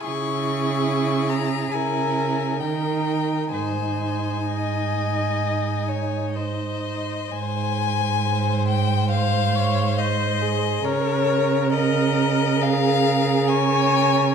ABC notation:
X:1
M:4/4
L:1/8
Q:1/4=67
K:Ab
V:1 name="Violin"
d'3 b a2 g2 | a6 e2 | a3 g f2 e2 | d2 e2 f2 a2 |]
V:2 name="Violin"
A4 B2 B2 | c2 e3 d c2 | c8 | B8 |]
V:3 name="Viola"
_F4 F2 E2 | E8 | z4 c d c A | B2 B2 A2 d2 |]
V:4 name="Cello" clef=bass
D,4 D,2 E,2 | A,,8 | A,,8 | D,8 |]